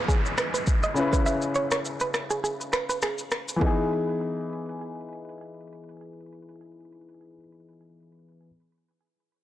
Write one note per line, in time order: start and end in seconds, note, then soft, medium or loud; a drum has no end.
0.00 0.91 E3 medium
0.00 0.92 B3 medium
0.00 0.93 D#4 medium
0.00 0.94 G#4 medium
0.00 downlifter medium
0.08 0.19 G#4 medium
0.08 kick loud
0.08 shaker medium
0.26 shaker soft
0.38 0.48 B4 medium
0.38 finger snap medium
0.38 cross-stick loud
0.38 shaker medium
0.54 0.63 B4 medium
0.54 shaker loud
0.67 kick medium
0.67 shaker medium
0.83 0.92 D#5 medium
0.83 shaker medium
0.94 3.27 C#3 medium
0.94 3.28 C#4 medium
0.94 3.28 E4 medium
0.94 shaker medium
0.99 3.29 B4 medium
1.13 1.22 B4 medium
1.13 kick loud
1.13 shaker loud
1.26 1.37 E5 medium
1.26 shaker medium
1.42 shaker soft
1.55 1.66 C#5 medium
1.55 shaker soft
1.71 1.80 C#5 medium
1.71 finger snap medium
1.71 cross-stick loud
1.71 shaker medium
1.85 shaker medium
2.00 2.10 B4 medium
2.00 shaker medium
2.14 finger snap medium
2.14 cross-stick loud
2.14 shaker medium
2.30 2.39 G#4 medium
2.30 shaker loud
2.44 2.54 G#4 medium
2.44 shaker medium
2.61 shaker soft
2.73 2.84 B4 medium
2.73 finger snap medium
2.73 cross-stick medium
2.73 shaker soft
2.89 2.98 B4 medium
2.89 shaker medium
3.02 3.22 G#4 medium
3.02 finger snap medium
3.02 cross-stick medium
3.02 shaker medium
3.18 shaker medium
3.31 finger snap medium
3.31 cross-stick medium
3.31 shaker soft
3.48 shaker loud
3.56 7.32 E3 medium
3.56 7.35 B3 medium
3.61 7.38 D#4 medium
3.61 3.79 G#4 medium
3.61 kick loud
3.66 7.42 G#4 medium